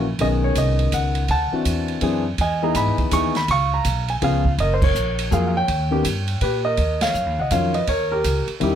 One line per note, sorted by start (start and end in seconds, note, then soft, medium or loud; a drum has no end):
0.00 0.18 A#1 medium
0.19 0.55 B1 medium
0.19 1.21 D#3 medium
0.19 1.22 B3 medium
0.19 1.22 C#4 medium
0.19 1.22 G#4 medium
0.19 0.26 D#5 loud
0.19 kick soft
0.19 ride medium
0.44 0.57 C#5 medium
0.55 0.91 C2 medium
0.55 0.95 D#5 medium
0.55 kick soft
0.55 hi-hat pedal medium
0.55 ride medium
0.79 ride soft
0.92 1.28 C#2 medium
0.92 1.30 F#5 medium
0.92 kick soft
0.92 hi-hat pedal soft
0.92 ride medium
1.15 ride soft
1.28 1.51 D2 medium
1.28 2.22 F#5 medium
1.28 2.22 A5 medium
1.28 kick soft
1.28 ride medium
1.52 1.99 E3 soft
1.52 2.00 C4 soft
1.52 2.00 D4 soft
1.52 2.00 F#4 medium
1.52 muted upright bass stroke soft
1.65 2.01 E2 medium
1.65 kick soft
1.65 hi-hat pedal soft
1.65 ride medium
1.88 ride soft
2.01 2.37 F#2 medium
2.01 2.23 E3 medium
2.01 2.23 C4 medium
2.01 2.23 D4 medium
2.01 2.24 G#4 medium
2.01 kick soft
2.01 ride medium
2.38 2.74 E2 medium
2.38 2.96 D#5 medium
2.38 2.62 G#5 medium
2.38 kick soft
2.38 ride medium
2.62 3.09 E3 medium
2.62 3.10 B3 medium
2.62 3.10 D#4 medium
2.62 3.10 G#4 medium
2.62 2.76 A#5 medium
2.75 2.88 G#2 medium
2.75 3.10 B5 medium
2.75 kick soft
2.75 hi-hat pedal medium
2.75 ride medium
2.87 2.98 E2 soft
2.98 3.10 D#2 medium
2.98 kick medium
2.98 ride soft
3.11 3.47 D#2 medium
3.11 3.33 E3 medium
3.11 3.33 B3 medium
3.11 3.33 D#4 medium
3.11 3.33 G#4 medium
3.11 3.34 C#6 medium
3.11 kick soft
3.11 hi-hat pedal medium
3.11 ride medium
3.35 3.48 B5 medium
3.35 snare soft
3.35 ride soft
3.48 3.84 C#2 medium
3.48 4.06 F5 medium
3.48 3.74 C#6 loud
3.48 kick soft
3.48 ride medium
3.74 4.07 A#5 medium
3.85 4.20 B1 medium
3.85 kick soft
3.85 hi-hat pedal medium
3.85 ride medium
4.08 4.15 G#5 medium
4.08 ride soft
4.22 4.57 C#2 medium
4.22 4.43 F3 medium
4.22 4.43 B3 medium
4.22 4.43 C#4 medium
4.22 4.43 G#4 medium
4.22 4.51 F5 medium
4.22 kick soft
4.22 ride medium
4.45 kick medium
4.58 4.94 F#1 medium
4.58 4.82 A#4 medium
4.58 4.74 D#5 medium
4.58 kick soft
4.58 ride medium
4.74 4.82 C5 medium
4.82 5.29 A#4 medium
4.82 5.34 C#5 medium
4.82 kick medium
4.82 crash medium
4.95 5.30 A#1 medium
4.95 hi-hat pedal medium
5.19 ride medium
5.31 5.67 F2 medium
5.31 5.52 F#3 medium
5.31 5.52 A#3 medium
5.31 5.53 F4 medium
5.31 5.53 G#4 medium
5.31 5.46 F5 medium
5.31 kick soft
5.31 hi-hat pedal medium
5.47 5.55 F5 medium
5.57 6.39 C#5 medium
5.57 6.38 G5 loud
5.68 6.03 D#2 medium
5.68 kick soft
5.68 ride medium
5.91 6.03 D#3 medium
5.91 6.03 B3 medium
5.91 6.03 C#4 medium
5.91 6.04 G4 medium
6.04 6.40 G2 medium
6.04 kick soft
6.04 hi-hat pedal medium
6.04 ride medium
6.28 ride soft
6.41 6.77 A#2 medium
6.41 6.64 G4 medium
6.41 6.63 B4 medium
6.41 kick soft
6.41 ride medium
6.65 6.99 A#4 medium
6.65 7.02 D#5 medium
6.77 7.13 D#2 medium
6.77 kick soft
6.77 ride medium
7.01 7.37 C#5 medium
7.01 7.39 F5 medium
7.01 snare medium
7.01 ride medium
7.14 7.26 F#2 medium
7.14 hi-hat pedal soft
7.26 7.38 D#2 soft
7.39 7.50 C#2 medium
7.39 7.52 D#5 medium
7.39 7.51 F#5 medium
7.51 7.87 F2 medium
7.51 7.72 D#3 medium
7.51 7.72 F#3 soft
7.51 7.73 C#4 soft
7.51 7.73 F4 medium
7.51 7.74 C#5 medium
7.51 7.76 F5 medium
7.51 kick soft
7.51 hi-hat pedal medium
7.51 ride medium
7.74 7.88 B4 medium
7.74 7.87 D#5 medium
7.74 ride soft
7.87 8.23 D#2 medium
7.87 8.10 A#4 medium
7.87 8.12 C#5 medium
7.87 kick soft
7.87 ride medium
8.12 8.46 G4 medium
8.12 8.46 A#4 medium
8.24 8.46 C#2 medium
8.24 kick soft
8.24 hi-hat pedal soft
8.24 ride medium
8.47 muted upright bass stroke soft
8.47 ride soft
8.60 8.75 E2 medium
8.60 8.75 D#3 medium
8.60 8.75 G3 medium
8.60 8.75 C#4 medium
8.60 8.75 E4 medium
8.60 8.75 G4 medium
8.60 kick soft
8.60 ride medium
8.64 8.75 D#4 soft